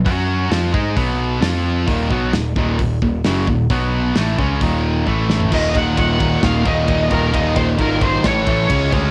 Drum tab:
CC |----------------|----------------|----------------|x---------------|
RD |----------------|----------------|----------------|--x-x-x-x-x-x-x-|
HH |o---o---o---o---|o---o---o---o---|o---o---o-------|----------------|
SD |----o-------o---|----o-------o---|----o---------o-|--------o-------|
FT |----------------|----------------|---------------o|----------------|
BD |o-----o-o-------|o-o---o-o-o---o-|o-----o-o---o---|o-o-o-o-o-o-o-o-|

CC |----------------|
RD |x-x-x-x-x-x-x-x-|
HH |----------------|
SD |--------o-------|
FT |----------------|
BD |o-o-o-o-o-o-o-o-|